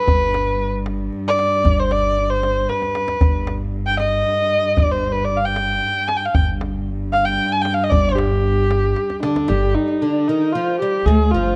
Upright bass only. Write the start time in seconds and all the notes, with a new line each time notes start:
0.07 G1
1.65 G1
3.22 G1
4.78 G1
6.35 G1
7.92 G1
9.50 G1
11.06 D2
11.33 G1